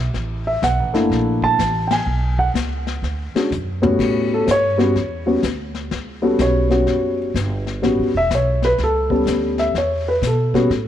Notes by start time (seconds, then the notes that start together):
Already playing: B1
0.14 A1, brush sweep, snare
0.47 E5
0.62 B1 F#5, snare, hi-hat pedal
0.79 A1
0.94 G1 A3 A#3 D4 E4, snare
1.10 A#1, brush sweep, snare
1.42 A5, kick
1.59 A1, snare, hi-hat pedal
1.87 G5, snare, ride
1.92 G#5
2.06 B1, brush sweep
2.38 F#5, kick
2.54 C#2, snare, hi-hat pedal
2.87 snare
3.02 D2, snare
3.34 G#3 C#4 D4 F#4, muted upright bass stroke, snare
3.51 F#2, floor tom, hi-hat pedal
3.82 A2 G3 B3 C#4 F#4, floor tom
3.99 A2, brush sweep, kick, snare, crash
4.34 A4
4.47 G2 C5, snare, hi-hat pedal
4.51 C#5
4.78 G3 B3 C#4 F#4, snare
4.95 E2, brush sweep, snare
5.26 G3 B3 C#4 F#4
5.43 D2, snare, hi-hat pedal
5.75 snare
5.91 C#2, brush sweep, snare
6.22 G3 B3 C#4 F#4 A4
6.39 B1 C#5, snare, hi-hat pedal
6.69 G3 B3 C#4 F#4, snare
6.86 F#1, brush sweep, snare
7.34 G1, snare, hi-hat pedal
7.67 snare
7.82 A1 G3 B3 C#4 F#4, brush sweep, snare
7.99 G1
8.14 E1 E5
8.30 B1, snare, hi-hat pedal
8.35 C#5
8.62 B4, snare
8.78 C#2, brush sweep, snare
8.83 A4
9.10 G3 B3 C#4 A4, kick
9.25 D2, snare, hi-hat pedal
9.58 E5, snare
9.74 E2 C#5, brush sweep, snare
10.08 B4
10.22 B2, snare, hi-hat pedal
10.27 A4
10.54 G3 B3 C#4 F#4, kick, snare
10.70 A2, brush sweep, snare